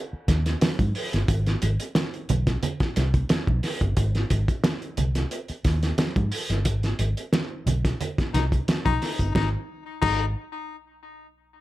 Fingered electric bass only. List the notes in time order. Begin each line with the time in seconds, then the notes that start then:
0.13 muted fingered electric bass stroke
0.28 D#2
0.80 G#2
1.14 G1
1.28 G#1
1.63 G#1
2.30 B1
2.97 C2
3.31 muted fingered electric bass stroke
3.48 B1
3.81 G1
3.97 G#1
4.31 G#1
4.98 C2
5.50 muted fingered electric bass stroke
5.65 D#2
6.17 G#2
6.50 G1
6.66 G#1
6.99 G#1
7.66 B1
8.34 C2
8.68 muted fingered electric bass stroke
8.86 B1
9.20 G1
9.35 G#1
10.03 G#1